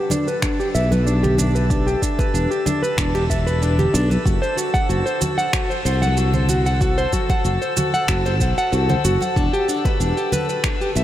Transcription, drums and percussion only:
0.10 high conga, low conga, shaker
0.28 shaker
0.42 finger snap, kick, shaker
0.60 shaker
0.75 high bongo, shaker
0.92 high conga, shaker
1.07 shaker
1.24 low conga, shaker
1.38 low conga, shaker
1.56 shaker
1.70 kick, shaker
1.87 shaker
2.02 kick, shaker
2.19 kick, high bongo, shaker
2.35 shaker
2.52 shaker
2.66 high bongo, high conga, low conga, shaker
2.84 shaker
2.98 finger snap, kick, shaker
3.15 high bongo, shaker
3.30 kick, shaker
3.47 shaker
3.62 shaker
3.79 low conga, shaker
3.95 shaker
4.11 high conga, shaker
4.26 kick, shaker
4.43 shaker
4.58 shaker
4.74 kick, high bongo, shaker
4.90 shaker
5.07 shaker
5.22 high conga, low conga, shaker
5.39 shaker
5.53 finger snap, kick, shaker
5.71 shaker
5.86 high bongo, shaker
6.02 high conga, shaker
6.17 shaker
6.34 low conga, shaker
6.49 low conga, shaker
6.66 shaker
6.81 kick, shaker
6.98 shaker
7.13 kick, high conga, shaker
7.30 kick, high bongo, shaker
7.45 shaker
7.62 shaker
7.77 high bongo, high conga, low conga, shaker
7.94 shaker
8.08 finger snap, kick, shaker
8.26 high bongo, shaker
8.41 kick, shaker
8.58 shaker
8.73 shaker
8.89 low conga, shaker
9.05 shaker
9.21 high conga, shaker
9.36 kick, shaker
9.54 shaker
9.69 shaker
9.85 kick, high bongo, shaker
10.01 shaker
10.17 shaker
10.32 high conga, low conga, shaker
10.49 shaker
10.64 finger snap, kick, shaker
10.81 shaker
10.95 high bongo, shaker

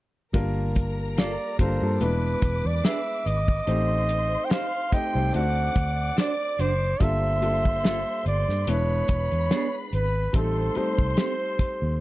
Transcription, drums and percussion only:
0.34 kick, closed hi-hat
0.76 kick, closed hi-hat
1.18 snare, closed hi-hat
1.59 kick, closed hi-hat
2.01 closed hi-hat
2.42 kick, closed hi-hat
2.85 snare, closed hi-hat
3.26 closed hi-hat
3.48 kick
3.67 closed hi-hat
4.09 closed hi-hat
4.51 snare, closed hi-hat
4.92 kick, closed hi-hat
5.34 closed hi-hat
5.75 kick, closed hi-hat
6.18 snare, closed hi-hat
6.59 closed hi-hat
7.00 kick, closed hi-hat
7.42 closed hi-hat
7.65 kick
7.84 snare, closed hi-hat
8.26 closed hi-hat
8.50 snare
8.67 closed hi-hat
9.08 kick, closed hi-hat
9.32 closed hi-hat
9.51 snare, closed hi-hat
9.93 closed hi-hat
10.34 kick, closed hi-hat
10.75 closed hi-hat
10.99 kick
11.17 snare, closed hi-hat
11.59 kick, closed hi-hat

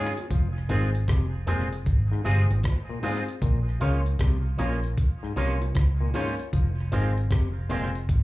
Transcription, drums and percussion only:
0.17 closed hi-hat, high bongo
0.31 kick, closed hi-hat
0.69 closed hi-hat
0.95 closed hi-hat
1.08 kick, cross-stick, closed hi-hat
1.47 closed hi-hat, low bongo
1.73 closed hi-hat
1.86 kick, closed hi-hat
2.26 closed hi-hat
2.50 closed hi-hat, high bongo
2.63 kick, cross-stick, closed hi-hat, high bongo
3.03 open hi-hat, high bongo, low bongo
3.28 closed hi-hat
3.42 kick, closed hi-hat
3.81 closed hi-hat
4.06 closed hi-hat
4.19 kick, cross-stick, closed hi-hat
4.59 closed hi-hat, low bongo
4.84 closed hi-hat
4.98 kick, closed hi-hat
5.37 closed hi-hat
5.61 closed hi-hat, high bongo
5.75 kick, cross-stick, closed hi-hat, high bongo
6.14 open hi-hat, high bongo, low bongo
6.40 closed hi-hat
6.53 kick, closed hi-hat
6.92 closed hi-hat
7.18 closed hi-hat
7.31 kick, cross-stick, closed hi-hat
7.70 closed hi-hat, low bongo
7.95 closed hi-hat
8.09 kick, closed hi-hat

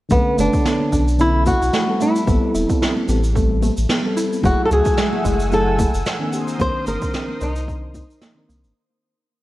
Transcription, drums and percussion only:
0.11 kick, high conga, low conga, cabasa
0.38 cabasa
0.53 kick, cabasa
0.65 snare, cabasa
0.80 high conga
0.92 kick, cabasa
1.08 cabasa
1.19 cabasa
1.46 kick, high conga, cabasa
1.62 cabasa
1.73 snare, cabasa
2.01 cabasa
2.16 cabasa
2.27 kick, high conga, low conga, cabasa
2.55 cabasa
2.69 kick, cabasa
2.82 snare, cabasa
2.97 high conga
3.08 cabasa
3.24 cabasa
3.36 kick, cabasa
3.62 high conga, cabasa
3.77 cabasa
3.89 snare, cabasa
4.17 cabasa
4.33 cabasa
4.43 kick, high conga, low conga, cabasa
4.71 cabasa
4.85 kick, cabasa
4.98 snare, cabasa
5.13 high conga
5.25 kick, cabasa
5.40 cabasa
5.52 cabasa
5.79 kick, high conga, cabasa
5.94 cabasa
6.06 snare, cabasa
6.33 cabasa
6.48 cabasa
6.60 kick, high conga, low conga, cabasa
6.87 cabasa
7.02 kick, cabasa
7.14 snare, cabasa
7.28 high conga
7.41 cabasa
7.56 cabasa
7.68 kick, cabasa
7.94 kick, high conga, cabasa
8.10 cabasa
8.21 snare, cabasa
8.50 cabasa
8.64 cabasa

